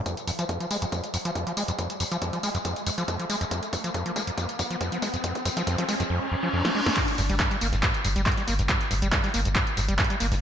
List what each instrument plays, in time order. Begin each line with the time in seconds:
Already playing: riser
0.06 acid bass F2, kick, closed hi-hat, tambourine
0.17 closed hi-hat, tambourine
0.27 acid bass F2, open hi-hat, tambourine
0.39 acid bass F3, closed hi-hat, tambourine
0.49 acid bass F2, kick, closed hi-hat, tambourine
0.60 acid bass F3, closed hi-hat, tambourine
0.71 acid bass G#3, open hi-hat, tambourine
0.82 acid bass F2, closed hi-hat, tambourine
0.92 acid bass F2, kick, closed hi-hat, tambourine
1.04 closed hi-hat, tambourine
1.14 acid bass F2, open hi-hat, tambourine
1.25 acid bass F3, closed hi-hat, tambourine
1.35 acid bass F2, kick, closed hi-hat, tambourine
1.47 acid bass F3, closed hi-hat, tambourine
1.57 acid bass G#3, open hi-hat, tambourine
1.68 acid bass F2, closed hi-hat, tambourine
1.79 acid bass F2, kick, closed hi-hat, tambourine
1.90 closed hi-hat, tambourine
2.00 acid bass F2, open hi-hat, tambourine
2.12 acid bass F3, closed hi-hat, tambourine
2.22 acid bass F2, kick, closed hi-hat, tambourine
2.33 acid bass F3, closed hi-hat, tambourine
2.43 acid bass G#3, open hi-hat, tambourine
2.55 acid bass F2, closed hi-hat, tambourine
2.65 acid bass F2, kick, closed hi-hat, tambourine
2.76 closed hi-hat, tambourine
2.86 acid bass F2, open hi-hat, tambourine
2.98 acid bass F3, closed hi-hat, tambourine
3.08 acid bass F2, kick, closed hi-hat, tambourine
3.19 acid bass F3, closed hi-hat, tambourine
3.30 acid bass G#3, open hi-hat, tambourine
3.41 acid bass F2, closed hi-hat, tambourine
3.51 acid bass F2, kick, closed hi-hat, tambourine
3.63 closed hi-hat, tambourine
3.73 acid bass F2, kick, open hi-hat, tambourine
3.84 acid bass F3, closed hi-hat, tambourine
3.94 acid bass F2, kick, closed hi-hat, tambourine
4.06 acid bass F3, closed hi-hat, tambourine
4.16 acid bass G#3, kick, open hi-hat, tambourine
4.27 acid bass F2, closed hi-hat
4.38 acid bass F2, kick, closed hi-hat, tambourine
4.49 closed hi-hat, tambourine
4.59 acid bass F2, kick, open hi-hat, tambourine
4.70 acid bass F3, closed hi-hat, tambourine
4.81 acid bass F2, kick, closed hi-hat, tambourine
4.92 acid bass F3, closed hi-hat, tambourine
5.02 acid bass G#3, kick, open hi-hat, tambourine
5.14 acid bass F2, closed hi-hat, tambourine
5.24 acid bass F2, kick, closed hi-hat, tambourine
5.35 kick, closed hi-hat, tambourine
5.45 acid bass F2, kick, open hi-hat, tambourine
5.57 acid bass F3, kick, closed hi-hat, tambourine
5.67 acid bass F2, kick, closed hi-hat, tambourine
5.78 acid bass F3, kick, closed hi-hat, tambourine
5.89 acid bass G#3, kick, open hi-hat, tambourine
6.00 acid bass F2, kick, closed hi-hat, tambourine
6.10 acid bass F2, reverse cymbal
6.32 acid bass F2
6.43 acid bass F3
6.53 acid bass F2
6.65 acid bass F3, snare
6.75 acid bass G#3
6.86 acid bass F2, snare
6.96 acid bass G2, kick, clap, closed hi-hat, crash, tambourine
7.08 closed hi-hat, tambourine
7.18 sub bass G1, acid bass G2, closed hi-hat, open hi-hat, tambourine
7.29 sub bass G1, acid bass G3, closed hi-hat, tambourine
7.39 acid bass G2, kick, snare, clap, closed hi-hat, tambourine
7.51 acid bass G3, closed hi-hat, tambourine
7.61 sub bass G1, acid bass A#3, closed hi-hat, open hi-hat, tambourine
7.73 sub bass G1, acid bass G2, snare, closed hi-hat, tambourine
7.83 acid bass G2, kick, clap, closed hi-hat, tambourine
7.94 closed hi-hat, tambourine
8.04 sub bass G1, acid bass G2, closed hi-hat, open hi-hat, tambourine
8.16 sub bass G1, acid bass G3, closed hi-hat, tambourine
8.26 acid bass G2, kick, snare, clap, closed hi-hat, tambourine
8.32 closed hi-hat
8.37 acid bass G3, snare, closed hi-hat, tambourine
8.47 sub bass G1, acid bass A#3, closed hi-hat, open hi-hat, tambourine
8.59 sub bass G1, acid bass G2, closed hi-hat, tambourine
8.69 acid bass G2, kick, clap, closed hi-hat, tambourine
8.80 snare, closed hi-hat, tambourine
8.91 sub bass G1, acid bass G2, closed hi-hat, open hi-hat, tambourine
9.02 sub bass G1, acid bass G3, closed hi-hat, tambourine
9.12 acid bass G2, kick, snare, clap, closed hi-hat, tambourine
9.24 acid bass G3, snare, closed hi-hat, tambourine
9.34 sub bass G1, acid bass A#3, closed hi-hat, open hi-hat, tambourine
9.45 sub bass G1, acid bass G2, closed hi-hat, tambourine
9.55 acid bass G2, kick, clap, closed hi-hat, tambourine
9.67 closed hi-hat, tambourine
9.77 sub bass G1, acid bass G2, closed hi-hat, open hi-hat, tambourine
9.88 sub bass G1, acid bass G3, closed hi-hat, tambourine
9.98 acid bass G2, kick, snare, clap, closed hi-hat, tambourine
10.04 closed hi-hat
10.10 acid bass G3, closed hi-hat, tambourine
10.20 sub bass G1, acid bass A#3, closed hi-hat, open hi-hat, tambourine
10.32 sub bass G1, acid bass G2, snare, open hi-hat, tambourine